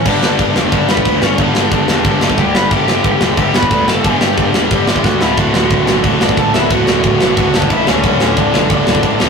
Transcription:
<<
  \new Staff \with { instrumentName = "Lead electric guitar" } { \time 4/4 \key g \lydian \tempo 4 = 180 <d' d''>2 <d' d''>8 <b b'>4 <cis' cis''>8 | <d' d''>2. <g' g''>8 <b' b''>8 | <g' g''>2 <g' g''>8 <b' b''>4 <a' a''>8 | <g' g''>2. <fis' fis''>8 <e' e''>8 |
<fis' fis''>2 <fis' fis''>8 <d' d''>8 <a' a''>8 <e' e''>8 | <fis' fis''>2 <fis' fis''>8 <d' d''>8 <e' e''>8 <cis' cis''>8~ | <cis' cis''>4 <d' d''>4 <d' d''>2 | }
  \new Staff \with { instrumentName = "Distorted electric guitar" } { \clef bass \time 4/4 \key g \lydian <g, d g>2 <g, d g>2 | <g, d g>2 <g, d g>2 | <g, d g>2 <g, d g>2 | <g, d g>2 <g, d g>4. <d, a, d>8~ |
<d, a, d>4. <d, a, d>2 <d, a, d>8~ | <d, a, d>4. <d, a, d>2 <d, a, d>8~ | <d, a, d>4. <d, a, d>2 <d, a, d>8 | }
  \new Staff \with { instrumentName = "Distorted electric guitar" } { \clef bass \time 4/4 \key g \lydian <g, d g>1 | <g, d g>1 | <g, d g>1 | <g, d g>2.~ <g, d g>8 <d, a, d>8~ |
<d, a, d>2.~ <d, a, d>8 <d, a, d>8~ | <d, a, d>2.~ <d, a, d>8 <d, a, d>8~ | <d, a, d>2.~ <d, a, d>8 <d, a, d>8 | }
  \new Staff \with { instrumentName = "Overdriven electric guitar" } { \clef bass \time 4/4 \key g \lydian r1 | r1 | r1 | r1 |
<d, a, d>1 | <d, a, d>1 | <d, a, d>1 | }
  \new Staff \with { instrumentName = "Picked electric bass" } { \clef bass \time 4/4 \key g \lydian g,,8 g,,8 g,,8 e,,8 g,,8 g,,8 d,8 g,,8 | g,,8 g,,8 g,,8 e,,8 g,,8 g,,8 d,8 g,,8 | g,,8 g,,8 g,,8 e,,8 g,,8 g,,8 d,8 g,,8 | g,,8 g,,8 g,,8 e,,8 g,,8 g,,8 d,8 d,,8 |
d,,8 d,,8 d,,8 b,,8 d,,8 d,,8 a,,8 d,,8 | d,,8 d,,8 d,,8 b,,8 d,,8 d,,8 a,,8 d,,8 | d,,8 d,,8 d,,8 b,,8 d,,8 d,,8 a,,8 d,,8 | }
  \new DrumStaff \with { instrumentName = "Drums" } \drummode { \time 4/4 <cymc bd>8 sn8 <cymc bd>8 sn8 <cymc bd>8 sn16 bd16 <cymc bd>8 sn8 | <cymc bd>8 sn8 <cymc bd>8 sn8 <cymc bd>8 sn16 bd16 <cymc bd>8 sn8 | <cymc bd>8 sn8 <cymc bd>8 sn8 <cymc bd>8 sn16 bd16 <cymc bd>8 sn8 | <cymc bd>8 sn8 <cymc bd>8 sn8 <cymc bd>8 sn16 bd16 <bd sn>8 sn8 |
<cymc bd>8 sn8 <cymc bd>8 sn8 <cymc bd>8 sn16 bd16 <cymc bd>8 sn8 | <cymc bd>8 sn8 <cymc bd>8 sn8 <cymc bd>8 sn16 bd16 <cymc bd>8 sn8 | <cymc bd>8 sn8 <cymc bd>8 sn8 <cymc bd>8 sn16 bd16 <cymc bd>8 sn8 | }
>>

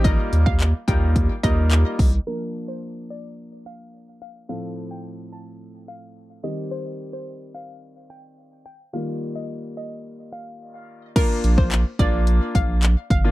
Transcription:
<<
  \new Staff \with { instrumentName = "Synth pluck" } { \time 4/4 \key bes \major \tempo 4 = 108 ees''8 r16 f''16 r8 g''8 r8 ees''8. r8. | bes'8 r16 c''16 r8 d''8 r8 f''8 r8 f''16 r16 | f''8 r16 g''16 r8 a''8 r8 f''8 r8 ees''16 r16 | c''8 r16 c''16 r8 f''8 r8 g''8 r8 g''16 r16 |
f''8 r16 ees''16 r8 ees''8 r8 f''8. r8. | bes'8 r16 c''16 r8 d''8 r8 f''8 r8 f''16 r16 | }
  \new Staff \with { instrumentName = "Grand piano" } { \time 4/4 \key bes \major <g bes ees' f' bes'>4~ <g bes ees' f' bes'>16 r16 <g bes ees' f' bes'>8. r16 <g bes ees' f' bes'>4~ <g bes ees' f' bes'>16 r16 | <f bes d' bes'>1 | <a, f a c' a'>2.~ <a, f a c' a'>8 <ees g c' g'>8~ | <ees g c' g'>2.~ <ees g c' g'>8 r8 |
<ees g bes f'>1 | <bes d' f'>4~ <bes d' f'>16 r16 <bes d' f'>4. r8. <bes d' f'>16 | }
  \new Staff \with { instrumentName = "Sub bass" } { \clef bass \time 4/4 \key bes \major a,,8 ees,4 ees,4 ees,4 c,8 | r1 | r1 | r1 |
r1 | r8 bes,,4 bes,,4 bes,,4 g,,8 | }
  \new DrumStaff \with { instrumentName = "Drums" } \drummode { \time 4/4 <hh bd>8 hh16 bd16 <hc hh>8 <hh bd>8 <hh bd>8 <hh bd>8 <hc hh>8 <hho bd>8 | r4 r4 r4 r4 | r4 r4 r4 r4 | r4 r4 r4 r4 |
r4 r4 r4 r4 | <cymc hh bd>8 hh16 bd16 <hc hh>8 <hh bd>8 hh8 <hh bd>8 <hc hh>8 <hh bd>8 | }
>>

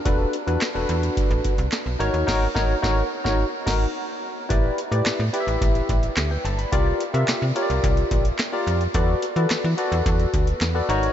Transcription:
<<
  \new Staff \with { instrumentName = "Tine electric piano" } { \time 4/4 \key e \phrygian \tempo 4 = 108 << { r1 | r1 | r2. <g' e''>16 <b' g''>16 a''16 <d'' b''>16~ | <d'' b''>16 r2. r8. |
r1 | } \\ { <d' fis' a' b'>8 r16 <d' fis' a' b'>16 r16 <d' fis' a' b'>4. r8. <dis' fis' ais' cis''>8 | <dis' fis' ais' cis''>8 <dis' fis' ais' cis''>8 <dis' fis' ais' cis''>8 r16 <dis' fis' ais' cis''>8 r16 <dis' fis' ais'>8 r4 | <e' g' b' d''>8 r16 <e' g' b' d''>8 r16 <e' g' b' d'' e''>4~ <e' g' b' d'' e''>16 r4 r16 | <f' g' bes' d''>8 r16 <f' g' bes' e''>8 r16 <f' g' bes' cis'' d''>4~ <f' g' bes' cis'' d''>16 r8 <f' g' bes' d''>8 r16 |
<fis' a' b' d''>8 r16 <fis' a' b' d''>8 r16 <fis' a' b' d''>4~ <fis' a' b' d''>16 r8 <fis' a' b' d''>16 <dis' fis' ais' cis''>8 | } >> }
  \new Staff \with { instrumentName = "FM bass" } { \clef bass \time 4/4 \key e \phrygian e,,8 r16 e,16 r16 e,,16 e,8 r16 a,,16 r16 c,16 r16 b,,16 gis,,16 dis,16 | gis,,8 gis,,8 gis,,8 r16 gis,,8 r16 gis,,8 r4 | a,,8 r16 a,16 a,16 a,16 r16 a,,16 a,,8 a,,8 d,8 g,,8 | c,8 r16 c16 c16 c16 r16 c,16 c,8 bes,,8 r8 f,8 |
e,8 r16 e16 e16 e16 r16 e,16 e,8 d,8 e,8 gis,,8 | }
  \new DrumStaff \with { instrumentName = "Drums" } \drummode { \time 4/4 <hh bd>8 hh16 hh16 <hc hh sn>8 hh16 hh16 <hh bd>16 hh16 <hh bd>16 hh16 <hc hh sn>8 hh16 hh16 | <cymc bd sn>8 <bd sn>8 <bd sn>8. <bd sn>16 r8 <cymc bd sn>8 r4 | <hh bd>8 hh16 hh16 <hc hh sn>8 hh16 hh16 <hh bd>16 hh16 <hh bd>16 hh16 <hc hh sn>8 hh16 hh16 | <hh bd>8 hh16 hh16 <hc hh sn>8 hh16 hh16 <hh bd>16 hh16 <hh bd>16 hh16 <hc hh sn>8 hh16 hh16 |
<hh bd>8 hh16 hh16 <hc hh sn>8 hh16 hh16 <hh bd>16 hh16 <hh bd>16 hh16 <hc hh sn>8 hh16 hh16 | }
>>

